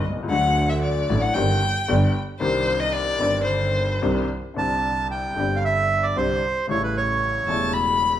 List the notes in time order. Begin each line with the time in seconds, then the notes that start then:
0.04 C2
0.09 B1
0.17 C2
0.23 C#2
0.28 D2 D3 F#3 A3 F#5
0.33 F#4
0.69 E5
0.82 D5
1.10 A1 A2 D3 F#3 A3 F#4
1.21 F#5
1.34 G1 G2 D#3 G3 C4 G4 G5
1.88 G1 G2 D3 G3 B3 G4
2.40 C2 C3 D#3 C4 D4 G4 C5
2.80 D#5
2.92 D5
3.18 G1 G2 D#3 C4 D4
3.22 G4
3.44 C5
4.02 C2 C3 D#3 C4 D4 G4
4.54 C2 C3 D3 G3 C4 A5
4.59 G4
5.11 G5
5.35 G1 G2 D3 G3 C4
5.39 G4
5.56 F5
5.65 E5
6.03 D5
6.16 C2 C3 D3 G3 C4 G4 C5
6.67 A1 A2 C#3 G3 A3 E4 C#5
6.83 B4
6.97 C#5
7.47 E1 E2 C#3 G3 A3 E4 A5
7.73 B5